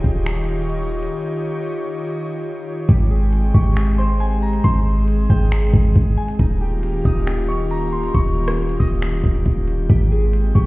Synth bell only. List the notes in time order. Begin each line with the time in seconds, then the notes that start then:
3.54 C#6
3.98 C6
4.20 G#5
4.43 A#5
4.64 C6
5.30 G5
6.18 G#5
7.05 D#6
7.48 C#6
7.71 A#5
7.92 C6
8.14 C#6
8.80 D#6
10.55 C#6